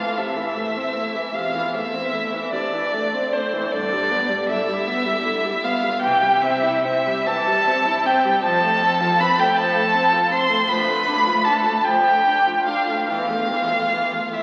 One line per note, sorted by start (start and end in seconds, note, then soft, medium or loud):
0.00 0.19 E3 medium
0.00 0.21 F4 medium
0.00 0.20 F5 loud
0.18 0.38 C3 medium
0.18 1.39 E4 medium
0.18 1.36 E5 loud
0.37 0.58 E3 medium
0.57 0.78 A3 medium
0.77 0.98 C4 medium
0.96 1.17 A3 medium
1.16 1.35 E3 medium
1.34 2.33 E2 medium
1.34 1.57 C3 medium
1.34 1.77 F4 medium
1.34 1.76 F5 loud
1.55 1.76 E3 medium
1.74 1.95 A3 medium
1.74 2.56 E4 medium
1.74 2.52 E5 loud
1.94 2.15 C4 medium
2.13 2.35 A3 medium
2.34 2.54 E3 medium
2.52 2.74 C3 medium
2.52 3.37 D4 medium
2.52 3.35 D5 loud
2.73 2.95 E3 medium
2.94 3.15 A3 medium
3.14 3.35 C4 medium
3.33 3.55 A3 medium
3.33 3.76 C4 medium
3.33 3.74 C5 loud
3.53 3.72 E3 medium
3.72 4.67 G2 medium
3.72 3.94 D3 medium
3.72 4.50 D4 medium
3.72 4.48 D5 loud
3.93 4.13 G3 medium
4.11 4.31 B3 medium
4.29 4.51 G3 medium
4.49 4.70 D3 medium
4.49 5.66 E4 medium
4.49 5.66 E5 loud
4.68 4.89 G3 medium
4.87 5.07 B3 medium
5.06 5.27 G3 medium
5.25 5.46 D3 medium
5.45 5.66 G3 medium
5.64 5.85 B3 medium
5.64 6.03 F4 medium
5.64 6.02 F5 loud
5.83 6.01 G3 medium
6.02 7.07 C3 loud
6.02 6.23 E3 medium
6.02 6.44 G4 loud
6.02 6.44 G5 loud
6.22 6.44 G3 medium
6.42 6.65 C4 medium
6.42 6.85 E4 loud
6.42 6.84 E5 loud
6.63 6.86 E4 medium
6.85 7.08 C4 medium
6.85 7.27 E4 medium
6.85 7.29 E5 loud
7.07 7.28 G3 medium
7.27 7.49 E3 medium
7.27 8.08 A4 loud
7.27 8.08 A5 loud
7.47 7.69 G3 medium
7.67 7.88 C4 medium
7.86 8.07 E4 medium
8.06 8.26 C4 medium
8.06 8.45 G4 loud
8.06 8.43 G5 loud
8.25 8.44 G3 medium
8.44 9.38 F2 loud
8.44 8.65 F3 medium
8.44 9.21 A4 loud
8.44 9.22 A5 loud
8.64 8.84 A3 medium
8.83 9.02 C4 medium
9.01 9.21 F4 medium
9.20 9.40 C4 medium
9.20 9.40 B4 loud
9.20 9.41 B5 loud
9.39 9.59 A3 medium
9.39 9.58 G4 loud
9.39 9.59 G5 loud
9.57 9.77 F3 medium
9.57 10.33 A4 loud
9.57 10.34 A5 loud
9.76 9.96 A3 medium
9.94 10.14 C4 medium
10.12 10.33 F4 medium
10.31 10.51 C4 medium
10.31 10.70 C5 loud
10.31 10.70 C6 loud
10.50 10.68 A3 medium
10.68 11.65 D2 loud
10.68 10.89 F3 medium
10.68 11.46 B4 loud
10.68 11.47 B5 loud
10.88 11.09 A3 medium
11.08 11.28 D4 medium
11.27 11.48 F4 medium
11.45 11.68 D4 medium
11.45 11.84 A4 medium
11.45 11.86 A5 loud
11.66 11.88 A3 medium
11.84 12.08 F3 medium
11.84 12.64 G4 loud
11.84 12.66 G5 loud
12.06 12.28 A3 medium
12.27 12.48 D4 medium
12.47 12.69 F4 medium
12.66 12.90 D4 medium
12.66 13.07 F4 medium
12.66 13.07 F5 loud
12.88 13.09 A3 medium
13.07 14.11 E2 medium
13.07 13.32 E3 medium
13.07 14.34 F4 loud
13.07 14.35 F5 loud
13.30 13.52 A3 medium
13.51 13.73 E3 medium
13.72 13.94 A3 medium
13.92 14.15 E3 medium
14.14 14.33 A3 medium
14.33 14.43 A3 medium
14.33 14.43 E4 medium
14.33 14.43 E5 medium